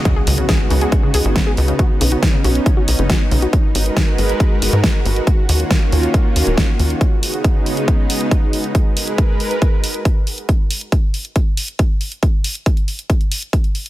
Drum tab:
HH |x-oxx-oxx-oxx-ox|x-oxx-oxx-oxx-ox|x-oxx-oxx-oxx-ox|x-oxx-oxx-oxx-ox|
SD |----o-------o---|----o-------o---|----o-------o---|----o-------o---|
BD |o---o---o---o---|o---o---o---o---|o---o---o---o---|o---o---o---o---|

HH |x-oxx-oxx-oxx-ox|x-oxx-oxx-oxx-ox|x-oxx-oxx-oxx-ox|x-oxxxoxxxoxxxox|
SD |----------------|----------------|----------------|----------------|
BD |o---o---o---o---|o---o---o---o---|o---o---o---o---|o---o---o---o---|